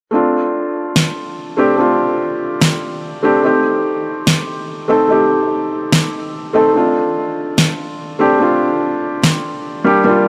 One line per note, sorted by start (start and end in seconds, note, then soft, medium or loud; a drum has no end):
0.11 1.55 A3 medium
0.11 1.55 C4 medium
0.11 1.56 D4 medium
0.15 1.57 F4 medium
0.96 snare loud
1.57 1.75 A3 medium
1.57 1.76 C4 medium
1.57 1.77 D4 medium
1.57 1.77 G4 loud
1.76 3.20 A3 medium
1.76 3.21 C4 medium
1.76 3.21 D4 medium
1.76 3.22 F4 medium
2.62 snare loud
3.23 3.41 A3 medium
3.23 3.42 C4 medium
3.23 3.42 D4 medium
3.23 3.42 G4 loud
3.42 4.86 A3 medium
3.42 4.86 C4 medium
3.42 4.87 D#4 medium
3.42 4.88 G4 medium
4.27 snare loud
4.88 5.06 A3 medium
4.88 5.07 C4 medium
4.88 5.08 D#4 medium
4.88 5.08 A4 medium
5.08 6.51 A3 medium
5.08 6.52 C4 medium
5.08 6.53 D#4 medium
5.12 6.53 G4 medium
5.92 snare loud
6.53 6.72 A3 medium
6.53 6.73 C4 medium
6.53 6.73 D#4 medium
6.53 6.73 A4 loud
6.73 8.17 A3 medium
6.73 8.17 C4 medium
6.73 8.18 D4 medium
6.77 8.19 F4 medium
7.58 snare loud
8.19 8.37 A3 medium
8.19 8.38 C4 medium
8.19 8.39 D4 medium
8.19 8.39 G4 loud
8.39 9.82 A3 medium
8.39 9.83 C4 medium
8.39 9.84 D4 medium
8.39 9.84 F4 medium
9.24 snare loud
9.84 10.03 G3 medium
9.84 10.04 A#3 medium
9.84 10.04 D4 medium
9.84 10.04 G4 loud
10.04 10.28 G3 medium
10.04 10.28 A#3 medium
10.04 10.28 D4 medium
10.04 10.28 F4 medium